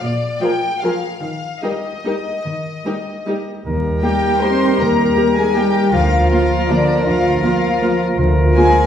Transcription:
0.03 0.34 A#2 medium
0.03 0.42 D5 medium
0.41 0.49 F3 soft
0.41 0.49 F4 soft
0.41 0.52 G#4 soft
0.41 0.52 A#4 soft
0.41 0.83 G5 medium
0.82 0.91 F3 soft
0.82 0.91 F4 soft
0.82 0.92 G#4 soft
0.82 0.92 A#4 soft
0.82 1.20 F5 medium
1.21 1.54 D#3 soft
1.21 1.62 F5 medium
1.62 1.71 G3 soft
1.62 1.71 D#4 soft
1.62 1.72 G4 soft
1.62 1.72 A#4 soft
1.62 3.47 D#5 soft
2.05 2.13 G3 soft
2.05 2.13 D#4 soft
2.05 2.15 G4 soft
2.05 2.14 A#4 soft
2.45 2.77 D#3 soft
2.85 2.93 G3 soft
2.85 2.94 D#4 soft
2.85 2.95 G4 soft
2.85 2.94 A#4 soft
3.27 3.35 G3 soft
3.27 3.35 D#4 soft
3.27 3.35 G4 soft
3.27 3.36 A#4 soft
3.66 3.97 D#2 soft
3.66 5.89 D#3 soft
3.66 5.89 G3 soft
3.66 5.93 G4 soft
3.66 5.89 A#4 soft
3.66 5.89 A#4 medium
4.02 4.39 G3 medium
4.02 4.10 A#3 soft
4.02 4.11 G4 soft
4.02 4.40 G4 medium
4.02 4.39 G5 medium
4.02 4.40 G5 medium
4.42 4.50 A#3 soft
4.42 4.79 C4 medium
4.42 4.50 G4 soft
4.42 4.79 C5 medium
4.42 4.79 C6 medium
4.79 5.10 D#2 medium
4.79 5.35 A#3 medium
4.79 5.37 A#4 medium
4.79 5.36 A#5 medium
4.79 5.37 A#5 medium
5.16 5.24 A#3 soft
5.16 5.24 G4 soft
5.36 5.56 G#3 medium
5.36 5.57 G#4 medium
5.36 5.56 G#5 medium
5.55 5.92 G3 medium
5.55 5.64 A#3 soft
5.55 5.63 G4 soft
5.55 5.93 G4 medium
5.55 5.93 G5 medium
5.92 6.23 D2 medium
5.92 6.29 F3 medium
5.92 8.18 F3 soft
5.92 8.16 F3 soft
5.92 8.18 F4 soft
5.92 6.30 F4 medium
5.92 8.15 A#4 medium
5.92 8.16 A#4 soft
5.92 6.29 F5 medium
5.92 6.30 F5 medium
6.30 6.69 F3 medium
6.30 6.38 A#3 soft
6.30 6.38 F4 soft
6.30 6.69 F4 medium
6.30 6.69 F5 medium
6.69 7.07 D3 medium
6.69 6.77 A#3 soft
6.69 7.07 D4 medium
6.69 6.77 F4 soft
6.69 7.07 D5 medium
7.06 7.38 D2 medium
7.06 7.42 F3 medium
7.06 7.43 F4 medium
7.06 7.42 F5 medium
7.06 7.43 F5 medium
7.43 8.00 F3 soft
7.43 7.52 A#3 soft
7.43 7.52 F4 soft
7.43 8.01 F4 medium
7.43 8.00 F5 medium
7.82 7.90 A#3 soft
7.82 7.90 F4 soft
8.19 8.50 D2 medium
8.19 8.86 F3 medium
8.19 8.86 F4 medium
8.19 8.86 A#4 medium
8.55 8.86 G#3 medium
8.55 8.64 A#3 soft
8.55 8.63 F4 soft
8.55 8.86 G#4 medium
8.55 8.86 G#5 medium

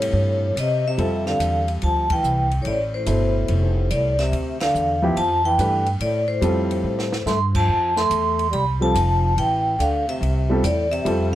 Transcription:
0.00 0.12 A2 medium
0.00 0.54 A2 medium
0.00 0.49 C3 medium
0.00 0.49 G3 medium
0.00 0.49 F4 medium
0.00 0.49 A4 medium
0.00 0.54 C#5 medium
0.00 ride medium
0.13 0.55 G2 medium
0.56 0.97 C3 medium
0.56 0.84 C3 medium
0.56 0.84 D#5 medium
0.56 hi-hat pedal medium
0.56 ride medium
0.87 1.25 C3 medium
0.87 1.25 E5 medium
0.98 1.39 F2 medium
0.98 2.15 G3 medium
0.98 2.16 C4 medium
0.98 2.16 F4 medium
0.98 2.16 A4 medium
0.98 ride medium
1.26 1.66 D3 medium
1.26 1.66 F5 medium
1.26 snare soft
1.39 1.80 E2 medium
1.39 hi-hat pedal soft
1.39 ride medium
1.68 ride soft
1.82 2.22 D2 medium
1.82 2.09 F3 medium
1.82 2.09 A5 medium
1.82 ride soft
2.10 2.50 E3 medium
2.10 2.50 G5 medium
2.10 kick medium
2.10 ride medium
2.23 2.64 C2 medium
2.23 hi-hat pedal medium
2.51 ride soft
2.62 3.06 A1 medium
2.62 2.65 A2 medium
2.62 2.66 C#5 medium
2.62 ride medium
2.66 2.79 A2 medium
2.66 2.79 D5 medium
2.94 3.88 A2 medium
2.94 3.88 C5 medium
3.06 3.48 G1 medium
3.06 3.71 B2 medium
3.06 3.72 E4 medium
3.06 3.71 A4 medium
3.06 3.72 C5 medium
3.06 hi-hat pedal soft
3.06 ride medium
3.48 3.90 F1 medium
3.48 ride medium
3.90 4.31 C2 medium
3.90 4.18 A2 medium
3.90 4.20 D5 medium
3.90 hi-hat pedal soft
3.90 ride medium
4.19 4.58 C3 medium
4.19 4.62 E5 medium
4.19 snare soft
4.19 ride soft
4.32 4.73 D2 medium
4.32 ride medium
4.61 5.01 D3 medium
4.61 5.00 F5 medium
4.61 snare medium
4.61 ride medium
4.74 5.15 E2 medium
4.74 hi-hat pedal soft
5.02 5.15 F3 medium
5.02 5.16 B3 medium
5.02 5.16 E4 medium
5.02 5.16 G4 medium
5.16 5.57 F2 medium
5.16 5.43 F3 medium
5.16 5.46 A5 loud
5.16 ride medium
5.45 5.84 E3 medium
5.45 5.84 G5 medium
5.58 5.99 G2 medium
5.58 5.84 A3 medium
5.58 5.84 D4 medium
5.58 5.85 G4 medium
5.58 5.85 B4 medium
5.58 hi-hat pedal soft
5.58 ride medium
5.86 ride soft
6.00 6.41 A2 medium
6.00 6.28 A2 medium
6.00 6.28 D5 medium
6.00 ride medium
6.28 7.23 A2 medium
6.28 7.23 C5 medium
6.41 6.83 F2 medium
6.41 7.07 G3 medium
6.41 7.07 C4 medium
6.41 7.07 F4 medium
6.41 7.08 A4 medium
6.41 hi-hat pedal medium
6.41 ride medium
6.71 ride soft
6.83 7.25 A2 medium
6.99 snare medium
7.13 snare medium
7.26 7.67 G2 medium
7.26 7.39 A3 medium
7.26 7.40 C6 loud
7.26 snare soft
7.26 hi-hat pedal medium
7.54 7.94 F3 medium
7.54 7.95 A5 medium
7.54 kick medium
7.54 crash medium
7.68 8.09 F2 medium
7.96 8.49 A3 medium
7.96 8.50 C6 loud
7.96 snare soft
8.10 8.51 E2 medium
8.10 hi-hat pedal medium
8.10 ride medium
8.39 ride soft
8.51 8.94 C2 medium
8.51 8.64 G3 medium
8.51 8.66 B5 loud
8.51 ride medium
8.81 9.33 F3 medium
8.81 8.94 G3 medium
8.81 8.94 C4 medium
8.81 8.94 F4 medium
8.81 8.94 A4 medium
8.81 9.40 A5 medium
8.95 9.36 F1 medium
8.95 hi-hat pedal medium
8.95 ride medium
9.36 9.78 A1 medium
9.36 9.76 E3 medium
9.36 9.81 G5 medium
9.36 ride medium
9.79 10.20 D2 medium
9.79 10.06 D3 medium
9.79 10.06 F5 medium
9.79 hi-hat pedal soft
9.79 ride medium
10.08 10.60 C3 medium
10.08 10.61 E5 medium
10.08 ride soft
10.21 10.62 C2 medium
10.21 ride medium
10.50 10.62 G3 medium
10.50 10.63 C4 medium
10.50 10.63 F4 medium
10.50 10.63 A4 medium
10.62 11.04 E2 medium
10.62 10.89 A2 medium
10.62 10.93 D5 medium
10.62 hi-hat pedal medium
10.62 ride medium
10.91 11.31 C3 medium
10.91 11.35 E5 medium
10.91 ride soft
11.05 11.35 F2 medium
11.05 11.35 G3 medium
11.05 11.35 C4 medium
11.05 11.35 F4 medium
11.05 11.35 A4 medium
11.05 ride medium

